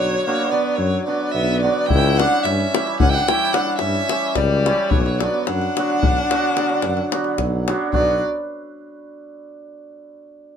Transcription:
Already playing: D3 F#3 C#5
0.00 B1
0.26 D3 F#3 A#3 B3 D4 F#4 C#5
0.50 D3 F#3 B3 D4 F#4 D5
0.75 F#2 F#3 C#5
1.06 D3 F#3 B3 D4 F#4 D5
1.31 B1 B3 E5
1.61 D3 F#3 B3 D4 F#4 D5
1.87 C#2 E4 G5, davul low
2.16 E3 G3 C#4 D4 E4 G4 F#5, davul high
2.33 davul high
2.44 G2 C#4 E5, davul high
2.60 davul high
2.75 E3 G3 C#4 E4 G4, davul high
2.87 davul high
3.00 C#2 C#4 F#5, davul low
3.09 E4 F#5 G5
3.15 D4, davul high
3.27 E3 G3 C#4 E4 G4 G5, davul high
3.53 E3 G3 C#4 D4 E4 F#5, davul high
3.57 G4
3.67 davul high
3.78 G2 C#4 E5, davul high
3.95 davul high
4.09 E3 G3 C#4 E4 G4, davul high
4.35 C#2 G3 D5, davul high, davul low
4.66 E3 G3 C#4 E4 G4, davul high
4.89 B1 F#3 C#5, davul low
5.06 davul high
5.19 D3 F#3 B3 D5, davul high
5.24 D4 F#4
5.34 davul high
5.45 F#2 D4 F#5, davul high
5.62 davul high
5.77 D3 F#3 B3 D4 F#4, davul high
5.90 davul high
6.03 B1, davul low
6.31 D3 F#3 B3 D4 F#4, davul high
6.56 D3 F#3 B3 D4 F#4, davul high
6.69 davul high
6.82 F#2, davul high
6.97 davul high
7.11 D3 F#3 B3 D4 F#4, davul high
7.24 davul high
7.38 B1, davul high, davul low
7.67 D3 F#3 B3 D4 F#4, davul high
7.93 B1 F#3 B3 D4 F#4 D5, davul low

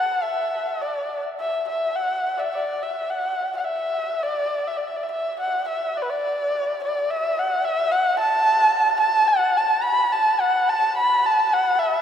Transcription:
Already playing: F#5
0.23 E5
0.81 D5
1.40 E5
1.68 E5
1.96 F#5
2.38 D5 E5
2.44 E5
2.54 D5
2.83 E5
3.10 F#5
3.57 F#5
3.64 E5
4.23 D5
4.68 E5
4.77 D5
4.87 E5
4.96 D5
5.03 E5
5.11 E5
5.40 F#5
5.68 E5
5.97 D5
6.02 B4
6.10 D5
6.84 D5
7.10 E5
7.39 F#5
7.65 E5
7.92 F#5
8.20 A5
9.00 A5
9.28 F#5
9.57 A5
9.83 B5
10.12 A5
10.40 F#5
10.69 A5
10.97 B5
11.26 A5
11.53 F#5
11.79 E5

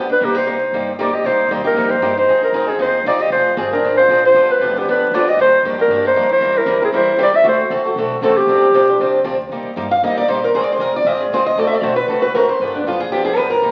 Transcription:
Already playing: D2
0.09 D4 B4
0.20 C2 C3 G3 A#3 D#4 G4
0.25 G4
0.35 D#4 C5
0.47 C3 G3 A#3 D#4 G4
0.72 G1 C3 G3 A#3 D#4 G4
0.99 C3 G3 A#3 D#4 G4 D5
1.13 G4 D#5
1.24 C2 C3 G3 A#3 D#4 G4 C5
1.49 D#2 C3 G3 A#3 D#4 G4
1.64 A#3 D#4 G4 A#4
1.74 F2 C3 G3 A#3 D#4 G4
1.89 D#4 C5
2.00 G2 C3 G3 A#3 D#4 G4
2.17 D#4 C5
2.27 F2 F3 C4 D#4 G#4
2.41 D#4 A#4, muted upright bass stroke
2.52 D2 F3 C4 D#4 G#4
2.67 C4 D#4 G#4
2.79 D#2 F3 C4 D#4 G#4 C5
3.04 C2 F3 C4 D#4 F4 G#4 D5
3.19 G4 D#5
3.30 F1 F3 C4 D4 F4 G#4 C5
3.57 G1 F3 C4 D4 G#4
3.73 C4 D4 G#4 A#4
3.83 G#1 F3 C4 D4 G#4
3.97 F4 C5
4.08 A#1 F3 C4 D4 G#4
4.25 F4 C5
4.34 G1 D3 F3 B3 D4 G4
4.51 D4 B4
4.59 F1 D3 F3 B3 D4 G4
4.76 B3 D4 G4
4.85 F2 D3 F3 B3 D4
4.89 G4 B4
5.11 D2 D3 F3 B3 D4 F4 G4 D5
5.28 G4 D#5
5.37 D#2 D#3 G3 A#3 D4 D#4 G4
5.41 C5
5.63 F2 D#3 G3 A#3 D4 G4
5.78 A#3 D4 G4 A#4
5.88 G2 D#3 G3 A#3 D4 G4
6.05 D#4 C5
6.14 F2 D#3 G3 A#3 D4 G4
6.30 E4 C5
6.41 E2 E3 G3 C4 E4 A#4
6.56 E4 A#4
6.66 D2 E3 G3 C4 E4 A#4
6.81 C4 E4 G#4 A#4
6.92 E2 E3 G3 C4 E4 A#4
6.96 C5
7.17 C2 E3 G3 C4 E4 G4 A#4
7.23 D5
7.34 G4 E5
7.43 D2 D3 A3 C4 F#4 A4
7.48 C5
7.70 C2 D3 A3 C4 F#4 A4
7.85 C4 F#4 A4
7.96 B1 D3 A3 C4 F#4 A4
8.21 A1 D3 A3 C4 F#4 A4
8.37 C4 G4
8.47 G1 C3 F3 C4 D4 G4
8.72 A#1 C3 F3 C4 D4 G4
8.88 C4 D4 G4
8.99 C2 C3 F3 C4 D4 G4
9.24 D2 C3 F3 C4 D4 G4
9.49 C2 C3 G3 A#3 D#4 G4
9.64 muted upright bass stroke
9.76 G2 C3 G3 A#3 D#4 G4
9.91 F5
10.03 D#2 C3 G3 A#3 D#4 G4 D#5
10.17 D5
10.28 A#1 C3 G3 A#3 D#4 G4 C5
10.44 A#4
10.54 C2 G#3 C4 F4 G#4 C5
10.63 D5
10.72 C5
10.79 F1 G#3 C4 F4 G#4 A#4
10.96 D5
11.04 G#1 G#3 C4 F4 G#4 D#5
11.21 G#4
11.30 C2 G#3 C4 F4
11.34 G#4 C5
11.46 D#5
11.55 D2 D3 A3 C4 F#4 A4 D5
11.67 E5
11.75 D5
11.82 B1 D3 A3 C4 F#4 A4 C5
11.96 B4
12.08 C2 D3 A3 C4 F#4 A4
12.22 B4
12.34 D2 D3 A3 C4 F#4 A4 A#4
12.49 C5
12.60 G2 D3 F3 B3 D4 G4 B4
12.75 D4
12.84 F#2 D3 F3 B3 D4 F4 G4
13.00 G#4
13.10 F2 D3 F3 B3 D4 G4
13.25 G#4
13.37 G2 D3 F3 B3 D4 G4 B4
13.50 A#4
13.62 C2 C3 G3 A#3 D#4 G4

